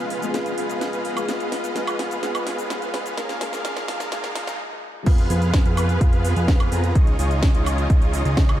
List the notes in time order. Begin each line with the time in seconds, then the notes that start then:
Already playing: C#3 F3 G#3 B3 F4 G#4 D#5, riser
0.00 B3 F4 G#4 B4 F5
0.10 open hi-hat
0.21 F3 G#3 B3 G#4, closed hi-hat, shaker
0.33 F3 G#3 B3 F4 G#4 B4 F5, snare, closed hi-hat, shaker
0.46 closed hi-hat, shaker
0.58 B3 F4 G#4 B4 F5, open hi-hat
0.70 closed hi-hat, shaker
0.81 snare, closed hi-hat, shaker
0.93 B3 F4 G#4 B4 F5, closed hi-hat, shaker
1.05 open hi-hat
1.16 F3 G#3 B3 G#4, closed hi-hat, high woodblock, shaker
1.27 B2 F3 G#3 B3 F4 G#4 B4 F5, snare, closed hi-hat, shaker
1.40 closed hi-hat, shaker
1.52 B3 F4 G#4 B4 F5, snare, open hi-hat
1.64 closed hi-hat, shaker
1.75 F3 G#3 B3 F4 G#4 B4 F5, snare, closed hi-hat, shaker
1.87 closed hi-hat, high woodblock, shaker
1.99 B3 F4 G#4 B4 F5, snare, open hi-hat
2.11 closed hi-hat, shaker
2.22 F3 G#3 B3 F4 G#4 B4 F5, snare, closed hi-hat, shaker
2.35 closed hi-hat, high woodblock, shaker
2.46 B3 F4 G#4 B4 F5, snare, open hi-hat
2.58 closed hi-hat, shaker
2.69 F3 G#3 B3 F4 G#4 B4 F5, snare, closed hi-hat, shaker
2.82 closed hi-hat, shaker
2.94 B3 F4 G#4 B4 F5, snare, open hi-hat
3.06 closed hi-hat, shaker
3.16 D#2 D#3 F3 G#3 A#3 F4 G#4 A#4 F5, snare, closed hi-hat, shaker
3.29 snare, closed hi-hat, shaker
3.40 F3 G#3 A#3 F4 G#4 A#4 F5, snare, open hi-hat
3.53 snare, closed hi-hat, shaker
3.64 F3 G#3 A#3 F4 G#4 A#4 F5, snare, closed hi-hat, shaker
3.77 snare, closed hi-hat, shaker
3.87 F3 G#3 A#3 F4 G#4 A#4 F5, snare, open hi-hat
4.00 snare, closed hi-hat, shaker
4.11 F3 G#3 A#3 F4 G#4 A#4 F5, snare, closed hi-hat, shaker
4.24 snare, closed hi-hat, shaker
4.34 F3 G#3 A#3 F4 G#4 A#4 F5, snare, open hi-hat
4.47 snare, closed hi-hat, shaker
5.06 F2 F3 B3 F4 G#4 B4 F5, kick, closed hi-hat, crash, shaker
5.18 closed hi-hat, shaker
5.30 F2 B3 F4 G#4 B4 F5, open hi-hat, shaker
5.42 closed hi-hat, shaker
5.54 kick, snare, closed hi-hat, shaker
5.65 F2 B3 F4 G#4 B4 F5, closed hi-hat, shaker
5.77 open hi-hat, high woodblock, shaker
5.89 closed hi-hat, shaker
6.01 F2 B3 F4 G#4 B4 F5, kick, closed hi-hat, shaker
6.13 closed hi-hat, shaker
6.25 open hi-hat, shaker
6.36 F2 B3 F4 G#4 B4 F5, closed hi-hat, shaker
6.48 kick, snare, closed hi-hat, shaker
6.60 closed hi-hat, high woodblock, shaker
6.72 F2 B3 F4 G#4 B4 A#5, open hi-hat, shaker
6.84 closed hi-hat, shaker
6.95 C#2 C#3 C#4 D#4 F4 G#4 C#5 D#5, kick, closed hi-hat, shaker
7.07 closed hi-hat, shaker
7.19 C#2 D#4 F4 G#4 C#5 D#5, open hi-hat, shaker
7.31 closed hi-hat, shaker
7.43 kick, snare, closed hi-hat, shaker
7.54 C#2 D#4 F4 G#4 C#5 D#5, closed hi-hat, shaker
7.66 open hi-hat, high woodblock, shaker
7.78 closed hi-hat, shaker
7.90 C#2 D#4, kick, closed hi-hat, shaker
8.02 closed hi-hat, shaker
8.13 open hi-hat, shaker
8.25 C#2 D#4 F4 G#4 C#5 D#5, closed hi-hat, shaker
8.37 kick, snare, closed hi-hat, shaker
8.49 closed hi-hat, high woodblock, shaker